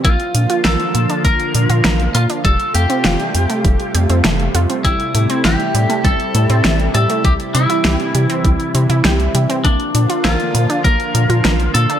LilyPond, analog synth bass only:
\new Staff \with { instrumentName = "Analog synth bass" } { \clef bass \time 4/4 \key bes \lydian \tempo 4 = 100 bes,,16 r16 bes,16 r16 bes,,16 r16 bes,16 r16 bes,,16 r16 bes,16 bes,16 bes,,8 bes,16 r16 | f,,16 r16 f,16 r16 f,,16 r16 f,16 r16 f,,16 r16 f,16 f,16 f,,8 f,16 r16 | a,,16 r16 a,16 r16 a,,16 r16 a,16 r16 a,,16 r16 a,16 a,16 a,,8 a,16 r16 | c,16 r16 c16 r16 c,16 r16 c16 r16 c,16 r16 c16 c16 c,8 c16 r16 |
bes,,16 r16 bes,16 r16 bes,,16 r16 bes,16 r16 bes,,16 r16 bes,16 bes,16 bes,,8 bes,16 r16 | }